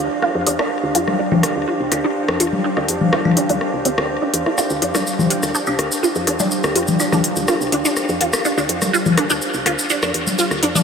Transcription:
0.00 10.83 D4 medium
0.00 10.83 G4 medium
0.00 10.83 C5 medium
0.00 10.83 F5 medium
0.22 0.27 F4 medium
0.22 cross-stick soft
0.35 0.45 F2 loud
0.47 0.57 E2 medium
0.47 0.51 D4 loud
0.47 open hi-hat medium
0.59 0.63 D4 loud
0.59 cross-stick medium
0.59 high woodblock medium
0.83 0.93 D2 loud
0.95 1.06 F2 medium
0.95 0.99 F4 loud
0.95 open hi-hat medium
1.08 cross-stick soft
1.08 high conga medium
1.19 1.23 D4 loud
1.32 1.42 D2 medium
1.32 1.36 D4 loud
1.32 high conga medium
1.32 low conga medium
1.43 cross-stick medium
1.43 open hi-hat medium
1.56 1.66 D2 medium
1.68 1.72 F4 loud
1.80 1.90 C2 medium
1.92 2.02 D2 medium
1.92 1.96 D4 loud
1.92 cross-stick soft
1.92 open hi-hat medium
1.92 high woodblock medium
2.04 2.08 D4 loud
2.28 2.38 F2 loud
2.28 cross-stick medium
2.40 2.51 E2 medium
2.40 2.44 F4 loud
2.40 open hi-hat medium
2.53 high conga medium
2.64 2.68 D4 loud
2.77 2.87 D2 medium
2.77 2.81 D4 loud
2.77 cross-stick soft
2.88 2.99 F2 medium
2.88 open hi-hat medium
3.01 high conga medium
3.01 low conga medium
3.13 3.17 F4 loud
3.13 cross-stick medium
3.25 3.35 D2 medium
3.25 high conga medium
3.25 low conga medium
3.25 high woodblock medium
3.37 3.41 D4 loud
3.37 open hi-hat medium
3.49 3.59 D2 medium
3.49 3.53 D4 loud
3.49 open hi-hat soft
3.49 high conga medium
3.61 cross-stick soft
3.74 3.83 C2 medium
3.85 3.96 D2 medium
3.85 3.89 C4 loud
3.85 open hi-hat medium
3.98 4.18 D2 medium
3.98 cross-stick medium
4.22 4.26 D4 loud
4.34 4.44 E2 medium
4.34 open hi-hat medium
4.46 4.50 E4 medium
4.46 cross-stick soft
4.58 4.62 F4 loud
4.58 cross-stick soft
4.58 shaker medium
4.70 4.80 D2 medium
4.70 shaker soft
4.82 4.93 F2 medium
4.82 4.86 D4 loud
4.82 open hi-hat medium
4.95 4.98 D4 loud
4.95 cross-stick medium
4.95 high conga medium
4.95 shaker medium
5.07 shaker medium
5.19 5.29 D2 medium
5.19 high conga medium
5.19 low conga medium
5.19 shaker soft
5.30 5.35 F4 loud
5.30 open hi-hat medium
5.43 5.53 D2 medium
5.43 cross-stick soft
5.43 shaker medium
5.55 5.59 D4 loud
5.55 shaker medium
5.67 5.77 C2 medium
5.67 5.71 D4 medium
5.67 high woodblock medium
5.67 shaker soft
5.79 5.89 D2 medium
5.79 cross-stick medium
5.79 open hi-hat medium
5.92 shaker medium
6.03 6.07 F4 loud
6.03 shaker medium
6.15 6.25 F2 loud
6.15 shaker soft
6.27 6.38 E2 medium
6.27 6.31 D4 medium
6.27 cross-stick soft
6.27 open hi-hat medium
6.40 6.44 D4 loud
6.40 high conga medium
6.40 shaker medium
6.51 shaker medium
6.63 6.74 D2 loud
6.63 cross-stick medium
6.63 shaker soft
6.76 6.86 F2 medium
6.76 6.80 F4 loud
6.76 open hi-hat medium
6.87 high conga medium
6.87 low conga medium
6.87 shaker medium
7.00 7.04 D4 loud
7.00 high woodblock medium
7.00 shaker medium
7.12 7.22 D2 medium
7.12 7.16 D4 loud
7.12 cross-stick soft
7.12 high conga medium
7.12 low conga medium
7.12 shaker soft
7.24 open hi-hat medium
7.36 7.46 D2 medium
7.36 high conga soft
7.36 shaker medium
7.48 7.52 F4 loud
7.48 cross-stick medium
7.48 shaker medium
7.61 7.70 C2 medium
7.61 shaker soft
7.72 7.83 D2 medium
7.72 7.77 D4 loud
7.72 open hi-hat medium
7.85 7.89 D4 loud
7.85 shaker medium
7.96 cross-stick soft
7.96 shaker medium
8.09 8.19 F2 loud
8.09 shaker soft
8.21 8.31 E2 medium
8.21 8.25 F4 loud
8.21 open hi-hat medium
8.33 cross-stick medium
8.33 high woodblock medium
8.33 shaker medium
8.45 8.49 D4 loud
8.45 shaker medium
8.57 8.67 D2 loud
8.57 8.61 D4 loud
8.57 shaker soft
8.69 8.80 F2 medium
8.69 open hi-hat medium
8.81 cross-stick soft
8.81 high conga medium
8.81 shaker medium
8.93 8.98 F4 loud
8.93 shaker medium
9.06 9.16 D2 medium
9.06 high conga medium
9.06 low conga medium
9.06 shaker soft
9.18 9.22 D4 loud
9.18 cross-stick medium
9.18 open hi-hat medium
9.30 9.40 D2 medium
9.30 9.34 D4 loud
9.30 shaker medium
9.42 shaker medium
9.54 9.64 C2 medium
9.54 shaker soft
9.66 9.76 D2 medium
9.66 9.70 F4 loud
9.66 cross-stick soft
9.66 open hi-hat medium
9.66 high woodblock medium
9.79 shaker medium
9.90 9.94 D4 loud
9.90 shaker medium
10.02 10.12 F2 loud
10.02 10.07 D4 loud
10.02 cross-stick medium
10.02 shaker soft
10.14 10.25 E2 medium
10.14 open hi-hat medium
10.27 high conga medium
10.27 shaker medium
10.38 10.43 F4 loud
10.38 shaker medium
10.51 10.61 D2 medium
10.51 cross-stick soft
10.51 shaker soft
10.63 10.73 F2 medium
10.63 10.67 D4 loud
10.63 open hi-hat medium
10.75 10.79 D4 loud
10.75 high conga medium
10.75 low conga medium
10.75 shaker medium

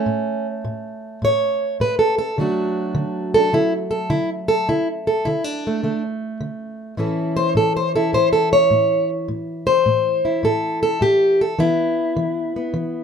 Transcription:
0.00 2.39 A3 soft
0.00 0.46 C#4 medium
0.06 0.61 A2 medium
0.65 1.19 A2 medium
1.22 1.76 A2 medium
1.22 1.81 C#5 loud
1.80 2.34 A2 medium
1.80 1.99 B4 medium
1.99 2.17 A4 medium
2.18 2.38 A4 medium
2.38 2.92 D3 medium
2.38 4.66 F#3 soft
2.38 5.67 A3 soft
2.38 3.35 D4 soft
2.38 3.34 F#4 soft
2.95 3.49 D3 medium
3.34 3.54 D4 soft
3.34 3.53 A4 loud
3.53 4.07 D3 medium
3.53 3.72 E4 medium
3.91 4.10 A4 medium
4.10 4.64 D3 medium
4.10 4.29 E4 medium
4.48 4.68 A4 loud
4.69 5.22 D3 medium
4.69 4.87 E4 medium
5.07 5.26 A4 medium
5.25 5.80 D3 medium
5.25 5.44 E4 medium
5.44 6.02 D4 loud
5.67 5.84 A3 soft
5.83 6.37 D3 medium
5.83 6.99 A3 soft
6.41 6.94 D3 medium
6.97 7.51 A2 medium
6.97 11.57 E3 soft
6.97 9.26 C#4 soft
6.97 7.96 E4 soft
6.97 7.36 A4 soft
7.37 7.55 C5 loud
7.55 8.09 A2 medium
7.55 7.75 A4 medium
7.77 7.95 C5 medium
7.96 10.25 E4 soft
7.96 8.14 A4 medium
8.13 8.67 A2 medium
8.13 8.32 C5 loud
8.33 8.51 A4 medium
8.53 9.09 C#5 loud
8.71 9.24 A2 medium
9.28 9.82 A2 medium
9.67 10.43 C5 medium
9.86 10.39 A2 medium
10.25 11.02 E4 soft
10.43 10.97 A2 medium
10.43 10.82 A4 medium
10.83 11.01 A4 medium
11.01 11.55 A2 medium
11.01 11.40 G4 loud
11.41 11.59 A4 medium
11.59 12.12 E3 medium
11.59 12.56 B3 soft
11.59 13.04 E4 medium
12.17 12.70 E3 medium
12.56 13.04 B3 soft
12.74 13.04 E3 medium

